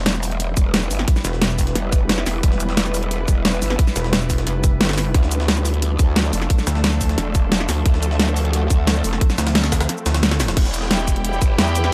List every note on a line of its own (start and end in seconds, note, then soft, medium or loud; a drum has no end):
0.00 0.55 E1 loud
0.00 5.10 G3 medium
0.00 5.10 B3 medium
0.00 5.10 E4 medium
0.00 5.10 B4 medium
0.06 snare loud
0.06 closed hi-hat medium
0.06 closed hi-hat loud
0.14 snare soft
0.14 closed hi-hat soft
0.14 shaker soft
0.23 closed hi-hat medium
0.23 open hi-hat medium
0.23 shaker medium
0.31 closed hi-hat soft
0.40 closed hi-hat medium
0.40 closed hi-hat loud
0.57 0.89 E1 loud
0.57 kick loud
0.57 closed hi-hat medium
0.57 shaker medium
0.74 snare loud
0.74 closed hi-hat loud
0.74 closed hi-hat medium
0.82 shaker soft
0.91 1.06 G1 loud
0.91 closed hi-hat medium
0.91 open hi-hat medium
0.91 shaker medium
0.99 snare soft
0.99 closed hi-hat soft
1.08 kick loud
1.08 closed hi-hat medium
1.08 closed hi-hat loud
1.16 snare soft
1.16 shaker soft
1.25 1.74 E1 loud
1.25 snare medium
1.25 closed hi-hat medium
1.25 shaker medium
1.33 snare soft
1.42 snare loud
1.42 closed hi-hat loud
1.42 closed hi-hat medium
1.50 shaker soft
1.59 kick medium
1.59 closed hi-hat medium
1.59 open hi-hat medium
1.59 shaker medium
1.67 snare soft
1.67 closed hi-hat soft
1.75 2.25 F1 loud
1.75 snare soft
1.75 closed hi-hat medium
1.75 closed hi-hat loud
1.92 kick loud
1.92 closed hi-hat medium
1.92 shaker medium
2.09 snare loud
2.09 closed hi-hat medium
2.18 snare medium
2.18 shaker soft
2.26 2.42 E1 loud
2.26 snare medium
2.26 closed hi-hat medium
2.26 open hi-hat medium
2.26 shaker medium
2.43 3.27 E1 loud
2.43 kick loud
2.43 closed hi-hat medium
2.52 snare soft
2.60 closed hi-hat medium
2.60 shaker medium
2.69 snare soft
2.77 snare loud
2.77 closed hi-hat medium
2.77 closed hi-hat loud
2.86 snare soft
2.86 closed hi-hat soft
2.86 shaker soft
2.94 closed hi-hat medium
2.94 open hi-hat medium
2.94 shaker medium
3.03 closed hi-hat soft
3.11 closed hi-hat medium
3.28 3.61 E1 loud
3.28 kick loud
3.28 closed hi-hat medium
3.28 shaker medium
3.45 snare loud
3.45 closed hi-hat medium
3.53 shaker soft
3.62 3.77 G1 loud
3.62 closed hi-hat medium
3.62 open hi-hat medium
3.62 shaker medium
3.70 snare soft
3.70 closed hi-hat soft
3.79 kick loud
3.79 closed hi-hat medium
3.87 snare soft
3.87 shaker soft
3.96 4.45 E1 loud
3.96 snare medium
3.96 closed hi-hat medium
3.96 shaker medium
4.04 snare medium
4.13 snare loud
4.13 closed hi-hat medium
4.21 shaker soft
4.30 kick medium
4.30 closed hi-hat medium
4.30 open hi-hat medium
4.30 shaker medium
4.38 snare soft
4.38 closed hi-hat soft
4.47 4.79 F1 loud
4.47 snare soft
4.47 closed hi-hat medium
4.64 kick loud
4.64 closed hi-hat medium
4.64 shaker medium
4.81 5.13 G1 medium
4.81 snare loud
4.81 closed hi-hat medium
4.85 snare medium
4.85 closed hi-hat medium
4.89 snare medium
4.89 closed hi-hat medium
4.89 shaker soft
4.93 snare medium
4.93 closed hi-hat medium
4.98 snare medium
4.98 closed hi-hat medium
4.98 open hi-hat medium
4.98 shaker medium
5.14 5.98 D2 loud
5.14 10.53 F3 medium
5.14 10.53 A3 medium
5.14 7.83 D4 medium
5.14 10.53 A4 medium
5.14 kick loud
5.14 closed hi-hat medium
5.23 snare soft
5.31 closed hi-hat medium
5.31 shaker medium
5.40 snare medium
5.48 snare loud
5.48 closed hi-hat medium
5.57 snare soft
5.57 closed hi-hat soft
5.57 shaker soft
5.65 closed hi-hat medium
5.65 open hi-hat medium
5.65 shaker medium
5.74 closed hi-hat soft
5.82 closed hi-hat medium
5.99 6.32 D2 loud
5.99 kick loud
5.99 closed hi-hat medium
5.99 shaker medium
6.16 snare loud
6.16 closed hi-hat medium
6.25 shaker soft
6.33 6.49 F1 loud
6.33 closed hi-hat medium
6.33 open hi-hat medium
6.33 shaker medium
6.42 snare soft
6.42 closed hi-hat soft
6.50 kick loud
6.50 closed hi-hat medium
6.58 snare soft
6.58 shaker soft
6.67 7.17 D2 loud
6.67 snare medium
6.67 closed hi-hat medium
6.67 shaker medium
6.75 snare soft
6.84 snare loud
6.84 closed hi-hat medium
6.92 shaker soft
7.01 kick medium
7.01 closed hi-hat medium
7.01 open hi-hat medium
7.01 shaker medium
7.09 snare soft
7.09 closed hi-hat soft
7.18 7.67 E1 loud
7.18 snare soft
7.18 closed hi-hat medium
7.35 kick loud
7.35 closed hi-hat medium
7.35 shaker medium
7.52 snare loud
7.52 closed hi-hat medium
7.60 snare medium
7.60 shaker soft
7.69 7.84 D2 medium
7.69 snare medium
7.69 closed hi-hat medium
7.69 open hi-hat medium
7.69 shaker medium
7.86 8.69 D2 loud
7.86 10.54 C4 medium
7.86 kick loud
7.86 closed hi-hat loud
7.86 closed hi-hat medium
7.94 snare soft
8.03 closed hi-hat medium
8.03 shaker medium
8.11 snare soft
8.19 snare loud
8.19 closed hi-hat loud
8.19 closed hi-hat medium
8.28 snare soft
8.28 closed hi-hat soft
8.28 shaker soft
8.36 closed hi-hat medium
8.36 open hi-hat medium
8.36 shaker medium
8.45 closed hi-hat soft
8.53 closed hi-hat loud
8.70 9.03 D2 loud
8.70 kick loud
8.70 closed hi-hat medium
8.70 shaker medium
8.87 snare loud
8.87 closed hi-hat medium
8.87 closed hi-hat loud
8.96 shaker soft
9.04 9.20 F1 loud
9.04 closed hi-hat medium
9.04 open hi-hat medium
9.04 shaker medium
9.13 snare soft
9.21 kick loud
9.21 closed hi-hat medium
9.21 closed hi-hat loud
9.30 snare soft
9.30 shaker soft
9.38 9.88 D2 loud
9.38 snare loud
9.38 closed hi-hat medium
9.38 shaker medium
9.47 snare loud
9.47 closed hi-hat medium
9.55 snare loud
9.55 closed hi-hat medium
9.64 snare loud
9.64 snare soft
9.64 closed hi-hat medium
9.64 shaker soft
9.72 kick medium
9.72 snare loud
9.72 closed hi-hat medium
9.72 open hi-hat medium
9.72 shaker medium
9.81 snare loud
9.81 closed hi-hat medium
9.81 closed hi-hat soft
9.89 snare soft
9.89 closed hi-hat medium
9.89 closed hi-hat loud
9.98 shaker soft
10.06 10.55 D2 loud
10.06 snare loud
10.06 closed hi-hat medium
10.06 shaker medium
10.14 snare loud
10.14 closed hi-hat soft
10.14 closed hi-hat medium
10.23 snare loud
10.23 closed hi-hat loud
10.23 closed hi-hat medium
10.31 snare loud
10.31 snare medium
10.31 closed hi-hat medium
10.31 shaker soft
10.40 snare loud
10.40 snare medium
10.40 closed hi-hat medium
10.40 open hi-hat medium
10.40 shaker medium
10.48 snare loud
10.48 closed hi-hat soft
10.48 closed hi-hat medium
10.57 11.40 E1 loud
10.57 11.94 E3 medium
10.57 11.94 G3 medium
10.57 11.94 B3 medium
10.57 11.94 E4 medium
10.57 11.94 G4 medium
10.57 kick loud
10.57 closed hi-hat loud
10.57 closed hi-hat medium
10.57 crash loud
10.65 snare soft
10.65 shaker soft
10.74 11.94 G5 medium
10.74 closed hi-hat medium
10.74 shaker medium
10.82 snare soft
10.87 11.94 G4 medium
10.87 snare loud
10.87 closed hi-hat loud
10.87 closed hi-hat medium
10.99 snare soft
10.99 closed hi-hat soft
10.99 shaker soft
11.08 kick medium
11.08 closed hi-hat medium
11.08 shaker medium
11.16 closed hi-hat soft
11.25 11.94 B4 medium
11.25 closed hi-hat loud
11.25 closed hi-hat medium
11.33 shaker soft
11.41 11.57 G1 loud
11.41 kick loud
11.41 closed hi-hat medium
11.41 shaker medium
11.58 11.91 E2 loud
11.58 snare loud
11.58 closed hi-hat loud
11.58 closed hi-hat medium
11.67 shaker soft
11.75 closed hi-hat medium
11.75 shaker medium
11.84 snare soft
11.84 closed hi-hat soft